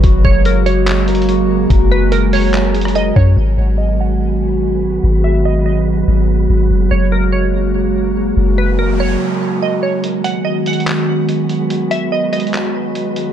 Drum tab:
HH |x-----------x-----x-----x-----x-x-x-x-----------|x-----------x-----o-----x-----x-x-x-x-----------|------------------------------------------------|------------------------------------------------|
CP |------------------------x-----------------------|------------------------x-----------------------|------------------------------------------------|------------------------------------------------|
SD |------------------------------------------------|---------------------------------r--------------|------------------------------------------------|------------------------------------------------|
BD |o-----o-----------------------------------------|o-----------------------------------------o-----|------------------------------------------------|------------------------------------------------|

HH |------------------------------------------------|------------------------------------------------|x-----x-----------x-x-x-x-----------x-----x-----|x-----x-----------x-x-x-x-----------x-----x-----|
CP |------------------------------------------------|------------------------------------------------|------------------------x-----------------------|------------------------x-----------------------|
SD |------------------------------------------------|------------------------------------------------|------------------------------------------------|------------------------------------------------|
BD |------------------------------------------------|------------------------------------------------|------------------------------------------------|------------------------------------------------|